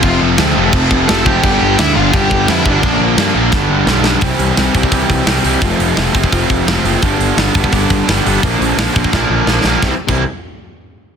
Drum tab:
CC |x---x---x---x---|x---x---x---x---|x---x-----------|----------------|
HH |----------------|----------------|----------------|o-o-o-o-o-o-o-o-|
SD |----o-------o---|----o-------o---|----o---o---o-o-|----o-------o---|
BD |o-------o-o---o-|o-------o-o---o-|o-------o-------|o-----ooo-o-----|

CC |----------------|----------------|----------------|---x------------|
HH |o-o-o-o-o-o-o-o-|o-o-o-o-o-o-o-o-|o-o-o-----------|----------------|
SD |----o-------o---|----o-------o---|----o---o---o-o-|o---------------|
BD |o-----ooo-o-----|o-----ooo-o-----|o-----ooo-------|o--o------------|